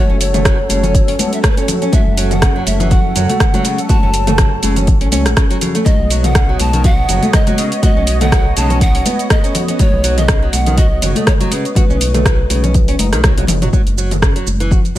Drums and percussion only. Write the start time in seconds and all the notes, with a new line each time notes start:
0.21 open hi-hat, shaker
0.34 closed hi-hat, mid tom, shaker
0.45 kick, cross-stick, closed hi-hat, shaker
0.69 open hi-hat, high conga, shaker
0.83 closed hi-hat, low conga, shaker
0.94 kick, closed hi-hat, shaker
1.08 open hi-hat
1.19 open hi-hat, high conga, shaker
1.33 closed hi-hat, shaker
1.44 kick, cross-stick, closed hi-hat, shaker
1.57 closed hi-hat, shaker
1.68 open hi-hat, low conga, shaker
1.82 closed hi-hat, shaker
1.92 kick, closed hi-hat, high conga, low conga, shaker
2.17 open hi-hat, shaker
2.31 closed hi-hat, mid tom, shaker
2.42 kick, cross-stick, closed hi-hat, shaker
2.66 open hi-hat, high conga, shaker
2.80 closed hi-hat, low conga, shaker
2.90 kick, closed hi-hat, low conga, shaker
3.16 open hi-hat, mid tom, shaker
3.29 closed hi-hat, high conga, shaker
3.40 kick, cross-stick, closed hi-hat, mid tom, shaker
3.54 closed hi-hat, high conga, shaker
3.65 open hi-hat, shaker
3.78 closed hi-hat, shaker
3.89 kick, closed hi-hat, high conga, low conga, shaker
4.14 open hi-hat, shaker
4.27 closed hi-hat, mid tom, shaker
4.38 kick, cross-stick, closed hi-hat, shaker
4.63 open hi-hat, high conga, shaker
4.76 closed hi-hat, low conga, shaker
4.87 kick, closed hi-hat, shaker
5.01 open hi-hat
5.12 open hi-hat, high conga, shaker
5.26 cross-stick, closed hi-hat, shaker
5.37 kick, cross-stick, closed hi-hat, shaker
5.51 closed hi-hat, shaker
5.61 open hi-hat, low conga, shaker
5.75 closed hi-hat, shaker
5.85 kick, closed hi-hat, high conga, low conga, shaker
6.10 open hi-hat, shaker
6.24 closed hi-hat, mid tom, shaker
6.35 kick, cross-stick, closed hi-hat, shaker
6.60 open hi-hat, high conga, shaker
6.73 closed hi-hat, low conga, shaker
6.83 kick, closed hi-hat, low conga, shaker
7.09 open hi-hat, mid tom, shaker
7.23 closed hi-hat, high conga, shaker
7.33 kick, cross-stick, closed hi-hat, mid tom, shaker
7.47 closed hi-hat, high conga, shaker
7.58 open hi-hat, shaker
7.72 closed hi-hat, shaker
7.83 kick, closed hi-hat, high conga, low conga, shaker
8.07 open hi-hat, shaker
8.21 closed hi-hat, mid tom, shaker
8.32 kick, cross-stick, closed hi-hat, shaker
8.57 open hi-hat, high conga, shaker
8.70 closed hi-hat, low conga, shaker
8.81 kick, closed hi-hat, shaker
8.95 open hi-hat
9.05 open hi-hat, high conga, shaker
9.19 closed hi-hat, shaker
9.30 kick, cross-stick, closed hi-hat, shaker
9.44 closed hi-hat, shaker
9.55 open hi-hat, low conga, shaker
9.68 closed hi-hat, shaker
9.79 kick, closed hi-hat, high conga, low conga, shaker
10.04 open hi-hat, shaker
10.18 closed hi-hat, mid tom, shaker
10.28 kick, cross-stick, closed hi-hat, shaker
10.53 open hi-hat, high conga, shaker
10.66 closed hi-hat, low conga, shaker
10.78 kick, closed hi-hat, low conga, shaker
11.02 open hi-hat, mid tom, shaker
11.15 closed hi-hat, high conga, shaker
11.27 kick, cross-stick, closed hi-hat, mid tom, shaker
11.41 closed hi-hat, high conga, shaker
11.52 open hi-hat, shaker
11.65 closed hi-hat, shaker
11.75 kick, closed hi-hat, high conga, low conga, shaker
11.90 shaker
12.00 open hi-hat, high conga, shaker
12.14 closed hi-hat, mid tom, shaker
12.25 kick, cross-stick, closed hi-hat, shaker
12.50 open hi-hat, high conga, shaker
12.64 closed hi-hat, low conga, shaker
12.74 kick, closed hi-hat, shaker
12.88 open hi-hat, shaker
12.99 open hi-hat, high conga, shaker
13.13 cross-stick, closed hi-hat, shaker
13.24 kick, cross-stick, closed hi-hat, mid tom, high tom, shaker
13.38 closed hi-hat, high tom, shaker
13.47 open hi-hat, mid tom, low conga, shaker
13.62 closed hi-hat, mid tom, shaker
13.73 kick, high conga, shaker
13.87 closed hi-hat, shaker
13.98 shaker
14.11 closed hi-hat, mid tom, shaker
14.22 kick, cross-stick, shaker
14.36 closed hi-hat, shaker
14.47 high conga, shaker
14.60 closed hi-hat, shaker
14.71 kick, low conga, shaker
14.85 closed hi-hat, shaker
14.95 high conga